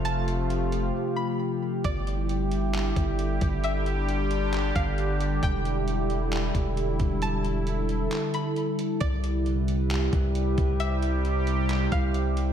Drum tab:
HH |xxxx----|xxxxxxxx|xxxxxxxx|xxxxxxxx|
CP |--------|----x---|----x---|----x---|
BD |--------|o----o-o|-----o--|o----o-o|

HH |xxxxxxxx|xxxxxxxx|xxxxxxxx|
CP |----x---|----x---|----x---|
BD |--------|o----o-o|-----o--|